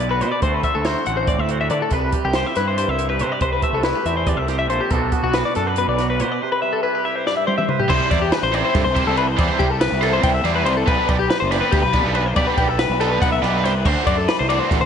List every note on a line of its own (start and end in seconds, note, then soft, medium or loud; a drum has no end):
0.00 0.23 B1 medium
0.00 0.40 B2 medium
0.00 0.40 B3 medium
0.00 0.43 D4 soft
0.00 0.21 A4 soft
0.00 0.10 D5 medium
0.00 closed hi-hat medium
0.09 0.42 F#4 soft
0.09 0.21 B4 medium
0.21 0.31 B2 medium
0.21 0.40 B4 medium
0.21 0.31 C5 medium
0.21 closed hi-hat medium
0.32 0.42 D5 medium
0.42 0.61 D2 medium
0.42 1.90 D3 medium
0.42 0.64 A3 medium
0.42 1.09 C4 medium
0.42 0.86 F#4 medium
0.42 1.70 A4 medium
0.42 0.54 C5 medium
0.42 kick medium
0.42 closed hi-hat medium
0.54 0.64 B4 medium
0.63 1.91 A3 medium
0.63 0.75 E5 medium
0.63 kick medium
0.63 closed hi-hat medium
0.75 0.94 D2 medium
0.75 0.85 A4 medium
0.85 1.50 F#4 medium
0.85 1.07 C5 medium
0.85 snare medium
0.85 closed hi-hat medium
1.06 1.35 A1 medium
1.06 2.58 C4 medium
1.06 1.17 F#5 medium
1.06 closed hi-hat medium
1.17 1.28 C5 medium
1.27 1.90 A2 medium
1.27 1.40 D5 medium
1.27 kick loud
1.27 closed hi-hat medium
1.39 1.71 D2 medium
1.39 1.51 E5 medium
1.49 1.90 F#4 medium
1.49 1.60 C5 medium
1.49 closed hi-hat medium
1.61 1.70 E5 medium
1.70 1.80 D3 medium
1.70 1.90 A4 medium
1.70 1.81 D5 medium
1.70 closed hi-hat medium
1.82 1.93 A4 medium
1.91 2.11 C2 medium
1.91 2.78 C3 medium
1.91 2.14 B4 medium
1.91 3.20 B4 medium
1.91 kick medium
1.91 closed hi-hat medium
2.12 3.62 G3 medium
2.12 2.24 G4 medium
2.12 kick medium
2.12 closed hi-hat medium
2.25 2.43 C2 medium
2.25 2.35 G4 medium
2.33 2.98 G4 medium
2.33 2.46 C5 medium
2.33 snare loud
2.33 closed hi-hat medium
2.46 2.57 E5 medium
2.56 2.85 G2 medium
2.56 2.97 E4 medium
2.56 2.67 B4 medium
2.56 snare soft
2.56 closed hi-hat medium
2.68 2.77 C5 medium
2.78 3.42 G2 medium
2.78 2.89 C5 medium
2.78 closed hi-hat medium
2.88 3.22 C2 medium
2.88 3.09 E5 medium
2.98 3.09 E4 soft
2.98 closed hi-hat medium
3.09 3.41 G4 soft
3.09 3.21 B4 medium
3.19 3.30 C3 medium
3.19 3.41 B4 medium
3.19 3.32 C5 medium
3.19 closed hi-hat medium
3.32 3.42 D5 medium
3.41 3.61 C2 medium
3.41 4.26 C3 medium
3.41 4.70 B4 medium
3.41 3.52 C5 medium
3.41 kick medium
3.41 closed hi-hat medium
3.53 3.63 B4 medium
3.62 4.88 A3 medium
3.62 3.74 E5 medium
3.62 kick medium
3.62 closed hi-hat medium
3.73 3.92 C2 medium
3.73 3.84 A4 medium
3.83 3.95 E4 medium
3.83 4.06 B4 medium
3.83 snare loud
3.83 closed hi-hat medium
3.95 4.48 G4 soft
4.05 4.34 E2 medium
4.05 4.92 C4 medium
4.05 4.16 E5 medium
4.05 closed hi-hat medium
4.17 4.27 C5 medium
4.27 4.91 C3 medium
4.27 4.37 D5 medium
4.27 kick loud
4.27 closed hi-hat medium
4.37 4.69 C2 medium
4.37 4.48 E5 medium
4.48 4.89 G4 medium
4.48 4.58 C5 medium
4.48 snare soft
4.48 closed hi-hat medium
4.59 4.69 E5 medium
4.69 4.79 A#1 medium
4.69 4.89 A4 medium
4.69 4.80 C5 medium
4.69 closed hi-hat medium
4.81 4.91 G4 medium
4.91 5.10 B1 medium
4.91 5.77 B2 medium
4.91 5.13 B3 medium
4.91 5.56 D4 medium
4.91 5.13 A4 medium
4.91 kick loud
4.91 closed hi-hat medium
4.95 5.34 F#4 medium
4.95 6.21 A4 medium
5.12 6.38 B3 medium
5.12 5.22 F#4 medium
5.12 kick medium
5.12 closed hi-hat medium
5.23 5.42 B1 medium
5.23 5.34 F#4 medium
5.33 5.98 F#4 medium
5.33 5.45 B4 medium
5.33 snare loud
5.33 closed hi-hat medium
5.45 5.56 D5 medium
5.55 5.84 F#2 medium
5.55 6.39 D4 medium
5.55 5.67 A4 medium
5.55 snare soft
5.55 closed hi-hat medium
5.67 5.77 B4 medium
5.76 6.39 B2 medium
5.76 5.88 B4 medium
5.76 closed hi-hat medium
5.88 6.21 B1 loud
5.88 6.09 D5 medium
5.98 6.39 F#4 medium
5.98 snare soft
5.98 closed hi-hat medium
6.10 6.20 B4 medium
6.20 6.29 B2 medium
6.20 6.40 B4 medium
6.20 6.32 C5 medium
6.20 closed hi-hat medium
6.32 6.42 D5 medium
6.42 7.27 C3 medium
6.42 7.69 B4 medium
6.42 6.52 C5 medium
6.52 6.62 B4 medium
6.62 9.39 G3 medium
6.62 6.73 E5 medium
6.73 6.83 A4 medium
6.83 6.95 E4 medium
6.83 7.04 B4 medium
6.95 7.47 G4 soft
7.05 7.87 E4 medium
7.05 7.16 E5 medium
7.16 7.26 C5 medium
7.27 7.90 G2 medium
7.27 7.37 D5 medium
7.27 snare medium
7.37 7.47 E5 medium
7.47 7.88 G4 medium
7.47 7.57 C5 medium
7.47 high tom medium
7.58 7.69 E5 medium
7.58 mid tom medium
7.69 7.88 B4 medium
7.69 7.79 C5 medium
7.69 mid tom medium
7.80 7.90 G4 medium
7.80 floor tom medium
7.89 8.00 C2 loud
7.89 8.17 G3 loud
7.89 8.17 C4 loud
7.89 8.17 E4 loud
7.89 8.10 C5 loud
7.89 8.17 C5 loud
7.89 kick loud
7.89 crash loud
8.11 8.30 E2 medium
8.11 8.21 D5 medium
8.11 kick medium
8.11 snare soft
8.11 ride medium
8.22 8.32 G4 medium
8.32 8.43 B4 medium
8.32 snare loud
8.32 ride loud
8.43 8.62 A1 medium
8.43 8.54 C5 medium
8.52 8.81 G3 medium
8.52 8.81 C4 medium
8.52 8.81 E4 loud
8.52 8.80 C5 loud
8.52 8.64 D5 medium
8.52 ride medium
8.65 8.75 C5 medium
8.75 8.84 G2 medium
8.75 8.84 A4 medium
8.75 kick loud
8.75 snare soft
8.75 ride loud
8.85 9.04 C2 loud
8.85 9.06 C5 medium
8.95 9.24 G3 medium
8.95 9.23 C4 medium
8.95 9.23 E4 medium
8.95 9.23 C5 loud
8.95 kick medium
8.95 ride medium
9.07 9.35 C2 medium
9.07 9.18 A4 medium
9.17 9.27 B4 medium
9.17 ride medium
9.28 9.38 C5 medium
9.37 9.48 E2 loud
9.37 9.65 G3 medium
9.37 9.66 C4 loud
9.37 9.66 E4 medium
9.37 9.66 C5 loud
9.37 9.49 D5 medium
9.37 kick loud
9.37 ride loud
9.49 9.60 C5 medium
9.59 9.89 C2 loud
9.59 9.70 G4 medium
9.59 kick medium
9.59 ride medium
9.70 9.81 A4 medium
9.81 10.02 B4 medium
9.81 snare loud
9.81 ride loud
9.92 10.20 C2 medium
10.01 10.30 G3 medium
10.01 10.30 C4 medium
10.01 10.30 E4 loud
10.01 10.13 A4 medium
10.01 10.29 C5 loud
10.01 snare soft
10.01 ride medium
10.13 10.23 C5 medium
10.23 10.43 C2 medium
10.23 10.34 G5 medium
10.23 kick loud
10.23 ride loud
10.34 10.45 E5 medium
10.44 10.67 E2 loud
10.44 10.73 G3 medium
10.44 10.72 C4 medium
10.44 10.72 E4 loud
10.44 10.72 C5 medium
10.44 10.55 D5 medium
10.44 snare soft
10.44 ride medium
10.55 10.65 B4 medium
10.65 10.86 C2 loud
10.65 10.76 C5 medium
10.65 ride medium
10.77 10.88 A4 medium
10.87 10.97 B1 loud
10.87 11.15 B3 loud
10.87 11.15 D4 loud
10.87 11.15 G4 loud
10.87 11.09 B4 medium
10.87 11.15 B4 loud
10.87 kick loud
10.87 ride loud
11.09 11.28 B1 medium
11.09 11.19 D5 medium
11.09 kick medium
11.09 ride medium
11.19 11.30 G4 medium
11.30 11.40 B4 medium
11.30 snare loud
11.30 ride loud
11.40 11.60 F#1 medium
11.40 11.51 C5 medium
11.51 11.80 B3 medium
11.51 11.79 D4 medium
11.51 11.79 G4 medium
11.51 11.79 B4 loud
11.51 11.60 D5 medium
11.51 snare soft
11.51 ride medium
11.61 11.72 B4 medium
11.72 11.82 D2 medium
11.72 11.83 G4 medium
11.72 kick loud
11.72 ride loud
11.83 12.02 B1 loud
11.83 12.05 B4 medium
11.93 12.22 B3 medium
11.93 12.22 D4 medium
11.93 12.21 G4 medium
11.93 12.21 B4 loud
11.93 kick medium
11.93 snare soft
11.93 ride medium
12.04 12.33 B1 medium
12.04 12.15 A4 medium
12.15 12.26 B4 medium
12.15 ride medium
12.26 12.36 C5 medium
12.36 12.46 B1 loud
12.36 12.64 B3 medium
12.36 12.65 D4 medium
12.36 12.65 G4 loud
12.36 12.65 B4 loud
12.36 12.47 D5 loud
12.36 kick loud
12.36 ride loud
12.47 12.58 B4 medium
12.58 12.86 B1 loud
12.58 12.68 G4 medium
12.58 kick medium
12.58 ride medium
12.68 12.79 A4 medium
12.79 13.00 B4 medium
12.79 snare loud
12.79 ride loud
12.90 13.18 B1 loud
13.00 13.28 B3 medium
13.00 13.28 D4 medium
13.00 13.28 G4 medium
13.00 13.11 A4 medium
13.00 13.28 B4 loud
13.00 snare soft
13.00 ride medium
13.12 13.21 B4 medium
13.22 13.41 B1 loud
13.22 13.32 F#5 medium
13.22 kick loud
13.22 ride loud
13.32 13.43 E5 medium
13.42 13.64 B1 loud
13.42 13.71 B3 medium
13.42 13.71 D4 medium
13.42 13.71 G4 medium
13.42 13.70 B4 loud
13.42 13.54 D5 medium
13.42 snare soft
13.42 ride medium
13.54 13.64 B4 medium
13.64 13.83 C2 medium
13.64 13.75 C5 medium
13.64 snare soft
13.64 ride medium
13.75 13.86 B4 medium
13.85 13.95 D2 loud
13.85 14.13 A3 medium
13.85 14.13 D4 medium
13.85 14.14 F#4 loud
13.85 14.06 C5 medium
13.85 14.14 C5 loud
13.85 kick loud
13.85 crash loud
14.07 14.26 F#2 medium
14.07 14.18 D5 medium
14.07 kick medium
14.07 ride medium
14.18 14.28 A4 medium
14.28 14.39 B4 medium
14.28 snare loud
14.28 ride loud
14.39 14.59 C2 loud
14.39 14.49 C5 medium
14.49 14.78 A3 medium
14.49 14.78 D4 medium
14.49 14.78 F#4 loud
14.49 14.77 C5 loud
14.49 14.59 D5 medium
14.49 ride medium
14.59 14.70 C5 medium
14.70 14.81 A1 loud
14.70 14.81 A4 medium
14.70 kick loud
14.70 snare soft
14.70 ride loud
14.81 14.86 D2 loud
14.81 14.86 C5 medium